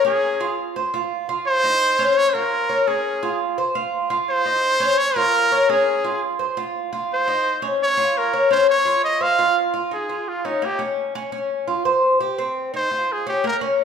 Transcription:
0.05 0.39 C#4 medium
0.05 0.55 G#4 medium
0.40 0.75 F4 medium
0.76 0.93 C5 medium
0.94 1.28 F4 medium
1.29 1.63 F4 medium
1.47 2.19 C5 loud
1.64 1.98 D#4 medium
1.99 2.33 C#4 medium
2.17 2.31 C#5 loud
2.29 2.35 C5 medium
2.33 2.69 F4 medium
2.33 2.89 A#4 loud
2.69 2.87 C#5 medium
2.87 3.22 C#4 medium
2.87 3.40 G#4 medium
3.23 3.57 F4 medium
3.58 3.75 C5 medium
3.75 4.09 F4 medium
4.10 4.45 F4 medium
4.30 5.00 C5 loud
4.46 4.80 D#4 medium
4.80 5.15 C#4 medium
4.98 5.18 C#5 loud
5.16 5.50 F4 medium
5.16 5.71 A#4 loud
5.52 5.69 C#5 medium
5.69 6.03 C#4 medium
5.69 6.22 G#4 medium
6.04 6.39 F4 medium
6.39 6.57 C5 medium
6.57 6.91 F4 medium
6.93 7.27 F4 medium
7.13 7.61 C5 loud
7.28 7.62 D#4 medium
7.62 7.97 C#4 medium
7.83 8.19 C#5 loud
7.97 8.32 F4 medium
8.18 8.51 A#4 medium
8.33 8.50 C#5 medium
8.51 8.85 C#4 medium
8.51 8.67 C5 loud
8.70 9.02 C#5 loud
8.85 9.20 F4 medium
9.04 9.23 D#5 loud
9.21 9.38 C5 medium
9.21 9.57 F5 loud
9.39 9.72 F4 medium
9.74 9.91 F4 medium
9.91 10.09 D#4 medium
9.91 10.30 G#4 medium
10.09 10.44 F4 medium
10.29 10.47 F4 medium
10.45 10.62 C#4 medium
10.45 10.66 D#4 medium
10.62 10.79 A#3 medium
10.62 10.81 G4 medium
10.79 11.13 C#4 medium
11.15 11.31 C#4 medium
11.32 11.67 C#4 medium
11.68 11.85 F4 medium
11.85 12.20 C5 medium
12.20 12.38 G4 medium
12.38 12.73 C4 medium
12.74 12.91 D#4 medium
12.74 13.14 C5 medium
12.91 13.25 F4 medium
13.12 13.28 G#4 medium
13.27 13.44 C#4 medium
13.27 13.44 G4 medium
13.44 13.61 A#3 medium
13.44 13.57 A#4 medium
13.61 13.84 C#4 medium

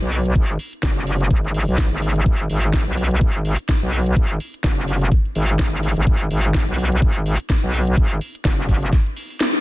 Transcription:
0.02 0.34 B1 medium
0.12 open hi-hat loud
0.25 closed hi-hat soft
0.35 0.58 G#1 medium
0.35 kick loud
0.35 closed hi-hat medium
0.49 closed hi-hat soft
0.59 open hi-hat loud
0.73 closed hi-hat soft
0.83 1.29 F#1 loud
0.83 kick loud
0.83 snare loud
0.83 closed hi-hat medium
0.97 closed hi-hat soft
1.07 open hi-hat loud
1.20 closed hi-hat soft
1.31 1.66 G#1 medium
1.31 kick loud
1.31 closed hi-hat medium
1.44 closed hi-hat soft
1.54 open hi-hat loud
1.68 1.90 B1 loud
1.68 open hi-hat medium
1.78 kick loud
1.78 snare loud
1.78 closed hi-hat medium
1.92 2.24 G#1 medium
2.02 open hi-hat loud
2.16 closed hi-hat soft
2.26 2.48 G#1 loud
2.26 kick loud
2.26 closed hi-hat medium
2.40 closed hi-hat soft
2.50 2.72 G#1 medium
2.50 open hi-hat loud
2.63 closed hi-hat soft
2.73 2.85 G#1 loud
2.73 kick loud
2.73 snare loud
2.73 closed hi-hat medium
2.87 3.20 B1 loud
2.97 open hi-hat loud
3.11 closed hi-hat soft
3.21 3.57 G#1 medium
3.21 kick loud
3.21 closed hi-hat medium
3.35 closed hi-hat soft
3.45 open hi-hat loud
3.59 closed hi-hat soft
3.69 kick loud
3.69 snare loud
3.69 closed hi-hat medium
3.83 4.15 B1 medium
3.93 open hi-hat loud
4.06 closed hi-hat soft
4.16 4.39 G#1 loud
4.16 kick loud
4.16 closed hi-hat medium
4.30 closed hi-hat soft
4.40 open hi-hat loud
4.54 closed hi-hat medium
4.64 5.10 F#1 loud
4.64 kick loud
4.64 snare loud
4.64 closed hi-hat medium
4.88 open hi-hat loud
5.02 closed hi-hat medium
5.12 kick loud
5.12 closed hi-hat medium
5.25 closed hi-hat soft
5.35 5.58 G#1 loud
5.35 open hi-hat loud
5.49 closed hi-hat medium
5.59 5.95 G#1 loud
5.59 kick loud
5.59 snare loud
5.59 closed hi-hat medium
5.83 open hi-hat loud
5.97 6.05 G#1 loud
5.97 closed hi-hat medium
6.07 6.29 G#1 medium
6.07 kick loud
6.07 closed hi-hat medium
6.21 closed hi-hat soft
6.31 6.53 G#1 medium
6.31 open hi-hat loud
6.44 closed hi-hat medium
6.54 6.66 G#1 loud
6.54 kick loud
6.54 snare loud
6.54 closed hi-hat medium
6.68 7.01 B1 loud
6.78 open hi-hat loud
6.92 closed hi-hat medium
7.02 7.37 G#1 loud
7.02 kick loud
7.02 closed hi-hat medium
7.16 closed hi-hat soft
7.26 open hi-hat loud
7.40 closed hi-hat medium
7.50 kick loud
7.50 snare loud
7.50 closed hi-hat medium
7.63 7.96 B1 medium
7.73 open hi-hat loud
7.87 closed hi-hat medium
7.97 8.20 G#1 loud
7.97 kick loud
7.97 closed hi-hat medium
8.11 closed hi-hat soft
8.21 open hi-hat loud
8.35 closed hi-hat medium
8.45 8.91 F#1 loud
8.45 kick loud
8.45 snare loud
8.45 closed hi-hat medium
8.59 closed hi-hat soft
8.69 kick medium
8.69 open hi-hat loud
8.83 closed hi-hat medium
8.93 kick loud
8.93 snare soft
8.93 closed hi-hat medium
9.06 closed hi-hat soft
9.16 open hi-hat loud
9.30 open hi-hat medium
9.40 snare loud
9.40 closed hi-hat medium
9.54 closed hi-hat soft

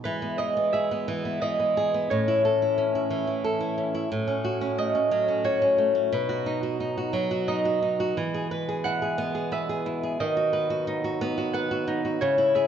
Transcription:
0.04 2.08 E2 medium
0.04 2.08 B2 medium
0.04 0.38 E3 medium
0.04 2.08 G#3 medium
0.04 2.09 B4 medium
0.22 0.56 B3 soft
0.38 1.07 E3 soft
0.38 0.79 D#5 medium
0.57 0.90 B3 soft
0.73 1.76 G#4 soft
0.73 1.48 E5 medium
0.91 1.24 B3 soft
1.08 1.41 E3 medium
1.25 1.58 B3 soft
1.42 2.08 E3 medium
1.42 3.20 D#5 medium
1.60 1.93 B3 soft
1.77 2.09 G#4 medium
1.94 2.10 B3 medium
2.10 6.07 A2 medium
2.10 4.07 A2 medium
2.10 4.08 E3 medium
2.10 4.09 C#4 medium
2.10 4.01 C#5 medium
2.28 2.44 E4 medium
2.45 3.43 A4 medium
2.62 2.94 E4 medium
2.78 3.77 C#4 medium
2.95 3.26 E4 soft
3.10 4.07 E3 medium
3.27 3.59 E4 medium
3.44 4.09 A4 medium
3.61 3.93 E4 medium
3.78 4.10 C#4 medium
3.95 4.10 E4 medium
4.10 6.08 A2 medium
4.10 8.13 F#3 medium
4.10 6.09 C#4 medium
4.28 4.60 C#4 medium
4.45 5.43 F#4 medium
4.61 4.94 C#4 medium
4.78 5.77 A3 medium
4.78 6.57 D#5 medium
4.95 5.27 C#4 medium
5.11 6.09 F#3 medium
5.28 5.60 C#4 medium
5.45 6.10 F#4 medium
5.45 7.36 C#5 medium
5.62 5.94 C#4 soft
5.78 6.11 A3 soft
5.95 6.11 C#4 soft
6.12 12.18 B2 medium
6.12 8.13 B2 medium
6.12 8.15 D#4 medium
6.12 8.17 B4 medium
6.29 6.62 F#4 soft
6.46 6.79 D#4 soft
6.63 6.96 F#4 soft
6.80 7.47 D#4 soft
6.97 7.30 F#4 soft
7.13 8.13 F#3 medium
7.31 7.64 F#4 soft
7.48 7.81 D#4 soft
7.48 9.26 D#5 medium
7.65 7.99 F#4 soft
7.82 8.16 D#4 soft
8.00 8.16 F#4 soft
8.17 10.19 E2 medium
8.17 10.17 E3 medium
8.17 10.19 G#3 medium
8.34 8.51 G#4 soft
8.51 9.50 B4 medium
8.69 9.01 G#4 soft
8.84 9.85 E4 soft
8.84 10.45 F#5 medium
9.02 9.34 G#4 soft
9.18 10.17 B3 medium
9.35 9.68 G#4 soft
9.52 10.18 B4 medium
9.52 10.26 E5 medium
9.69 10.02 G#4 soft
9.86 10.19 E4 soft
10.03 10.20 G#4 medium
10.20 12.20 D#2 medium
10.20 12.17 D#3 medium
10.20 12.20 F#3 medium
10.20 11.98 D#5 medium
10.37 10.69 F#4 soft
10.53 11.53 B4 medium
10.70 11.03 F#4 soft
10.87 11.86 D#4 medium
11.04 11.37 F#4 medium
11.21 12.19 B3 medium
11.38 11.70 F#4 soft
11.53 12.19 B4 medium
11.53 12.67 F#5 medium
11.71 12.04 F#4 soft
11.88 12.20 D#4 medium
12.05 12.21 F#4 soft
12.21 12.67 C#3 medium
12.21 12.67 G#3 medium
12.21 12.67 E4 medium
12.21 12.67 C#5 medium
12.38 12.67 E4 medium
12.55 12.67 G#4 medium
12.55 12.67 E5 medium

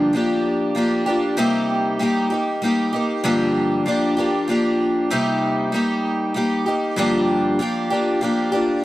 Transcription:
0.00 0.13 G2 medium
0.00 0.14 D3 medium
0.00 0.12 F3 medium
0.00 0.14 A#3 medium
0.00 0.14 D4 medium
0.00 0.16 G4 medium
0.13 0.74 F3 medium
0.13 0.75 A#3 medium
0.13 0.76 D4 medium
0.13 0.78 G4 medium
0.75 1.07 F3 medium
0.75 1.07 A#3 medium
0.75 1.06 D4 medium
0.75 1.05 G4 medium
1.06 1.37 F3 soft
1.06 1.37 A#3 soft
1.06 1.38 D4 soft
1.06 1.38 G4 medium
1.37 2.00 C3 medium
1.37 1.99 G3 medium
1.37 2.00 A#3 medium
1.37 2.01 D#4 medium
1.37 2.02 G4 medium
1.99 2.31 G3 medium
1.99 2.32 A#3 medium
1.99 2.31 D#4 medium
1.99 2.29 G4 medium
2.30 2.62 A#3 soft
2.30 2.63 D#4 soft
2.30 2.62 G4 soft
2.62 2.93 G3 medium
2.62 2.94 A#3 medium
2.62 2.93 D#4 medium
2.62 2.91 G4 medium
2.93 3.23 A#3 soft
2.93 3.25 D#4 soft
2.93 3.24 G4 soft
3.24 3.86 G2 medium
3.24 3.86 D3 medium
3.24 3.84 F3 medium
3.24 3.86 A#3 medium
3.24 3.87 D4 medium
3.24 3.89 G4 medium
3.86 4.17 F3 medium
3.86 4.18 A#3 medium
3.86 4.17 D4 medium
3.86 4.16 G4 medium
4.17 4.46 F3 soft
4.17 4.48 A#3 soft
4.17 4.49 D4 soft
4.17 4.48 G4 soft
4.48 5.10 F3 medium
4.48 5.11 A#3 medium
4.48 5.12 D4 medium
4.48 5.12 G4 medium
5.11 5.73 C3 medium
5.11 5.72 G3 medium
5.11 5.73 A#3 medium
5.11 5.73 D#4 medium
5.11 5.75 G4 medium
5.72 6.34 G3 medium
5.72 6.35 A#3 medium
5.72 6.36 D#4 medium
5.72 6.37 G4 medium
6.34 6.66 G3 soft
6.34 6.67 A#3 soft
6.34 6.67 D#4 medium
6.34 6.65 G4 medium
6.66 6.97 A#3 soft
6.66 6.98 D#4 soft
6.66 6.97 G4 soft
6.96 7.59 G2 medium
6.96 7.59 D3 medium
6.96 7.58 F3 medium
6.96 7.60 A#3 medium
6.96 7.60 D4 medium
6.96 7.62 G4 medium
7.59 7.90 F3 medium
7.59 7.91 A#3 medium
7.59 7.90 D4 medium
7.59 7.89 G4 medium
7.90 8.20 F3 soft
7.90 8.21 A#3 soft
7.90 8.22 D4 soft
7.90 8.21 G4 medium
8.21 8.52 F3 medium
8.21 8.53 A#3 medium
8.21 8.52 D4 medium
8.21 8.51 G4 medium
8.52 8.84 F3 soft
8.52 8.84 A#3 soft
8.52 8.84 D4 soft
8.52 8.83 G4 medium

